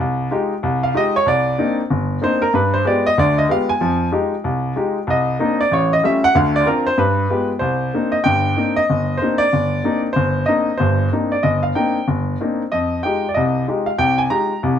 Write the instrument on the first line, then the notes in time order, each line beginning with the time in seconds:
grand piano
0.00 C2
0.31 G#3 D#4 F4 G4
0.63 C2
0.83 F5
0.94 G#3 D#4 F4 G4 D#5
1.16 C#5
1.26 C2 D5
1.58 A#3 C4 D4 D#4
1.90 G1
2.22 A#3 C4 D4 D#4 C5
2.42 A#4
2.54 G2 B4
2.74 C5
2.85 G#3 B3 F4 G4 D5
3.06 D#5
3.18 D2 D3 D5
3.38 D#5
3.49 G#3 B3 F4 G4 F5
3.69 G#5
3.81 F2 F3
4.12 G#3 D#4 F4 G4
4.44 C2
4.76 G#3 D#4 F4 G4
5.07 C2 D#5
5.39 A#3 C4 D4 D#4
5.61 D5
5.71 A1 C#5
5.93 D#5
6.03 G3 A3 C#4 F4 E5
6.24 F#5
6.35 D2 D3 F5
6.56 D5
6.66 C4 D4 F4 A#4
6.87 C5
6.98 G2 B4
7.30 G#3 B3 F4 G4
7.59 C2 C5
7.94 A#3 C4 D4 D#4
8.12 D#5
8.24 G1 G2 G5
8.57 A#3 C4 D4 D#4
8.76 D#5
8.90 G1
9.17 A#3 C5
9.22 C4 D4 D#4
9.38 D5
9.53 G1
9.84 A#3 C4 D4 D#4
10.13 G1 C5
10.46 A#3 C4 D4 D#4 D#5
10.78 G1 G2 C5
11.12 A#3 C4 D4 D#4
11.32 D5
11.43 G1 D#5
11.63 F5
11.75 A#3 C4 D4 D#4 G5
12.08 G1
12.41 A#3 C4 D4 D#4
12.72 F2 D#5
13.03 G#3 D#4 F4 G4 G5
13.29 D5
13.34 C2 C3 D#5
13.68 G#3 D#4 F4 G4
13.86 F5
13.98 C2 C3 G5
14.18 G#5
14.30 G#3 D#4 F4 G4 A#5
14.63 C2 C3